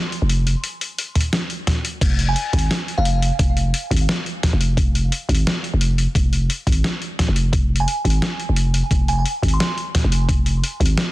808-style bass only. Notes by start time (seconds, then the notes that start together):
0.22 F1
2.01 F1
2.53 G#1
2.98 F1
3.39 F1
3.91 G#1
4.53 F1
4.77 F1
5.29 G#1
5.74 F1
6.15 F1
6.67 G#1
7.28 F1
7.53 F1
8.05 G#1
8.49 F1
8.91 F1
9.43 G#1
10.04 F1
10.29 F1
10.80 G#1